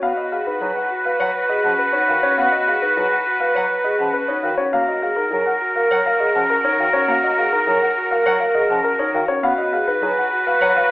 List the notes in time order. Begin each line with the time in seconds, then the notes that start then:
0.02 B3 F#4 B4 F5
0.17 F#4 D#5
0.32 G#4 F5
0.46 D#4 B4
0.60 F#3 G#4 B4
0.76 F#5
0.91 F#4
1.05 B4 F5
1.20 F#3 C#5 F#5
1.35 B4
1.49 G#4 D#5
1.64 F3 C#4 F#5
1.78 B4
1.93 D#4 C#5
2.08 D#3 F#4 F5
2.23 C#4 C#5
2.38 B3 F#4 F5
2.52 F#4 D#5
2.67 G#4 F5
2.82 D#4 B4
2.97 F#3 G#4 B4
3.11 F#5
3.26 F#4
3.40 B4 F5
3.55 F#3 C#5 F#5
3.70 B4
3.84 G#4 D#5
3.98 F3 C#4 F#5
4.13 B4
4.28 D#4 C#5
4.43 D#3 F#4 F5
4.58 C#4 C#5
4.73 A#3 F#4 A#4 F5
4.88 F#4 D#5
5.02 G#4 F5
5.16 D#4 A#4
5.31 F#3 G#4 A#4
5.46 F#5
5.61 F#4
5.75 A#4 F5
5.91 F#3 C#5 F#5
6.05 A#4 F5
6.20 G#4 D#5
6.35 F3 C#4 F#5
6.50 A#4
6.64 D#4 C#5
6.79 D#3 F#4 F5
6.93 C#4 C#5
7.08 A#3 F#4 F5
7.23 F#4 D#5
7.38 G#4 F5
7.53 D#4 A#4
7.67 F#3 G#4 A#4
7.82 F#5
7.97 F#4
8.11 A#4 F5
8.26 F#3 C#5 F#5
8.40 A#4 F5
8.55 G#4 D#5
8.69 F3 C#4 F#5
8.84 A#4
8.99 D#4 C#5
9.13 D#3 F#4 F5
9.28 C#4 C#5
9.43 B3 F#4 B4 F5
9.58 F#4 D#5
9.73 G#4 F5
9.88 D#4 B4
10.01 F#3 G#4 B4
10.17 F#5
10.32 F#4
10.46 B4 F5
10.61 F#3 C#5 F#5
10.76 B4 F5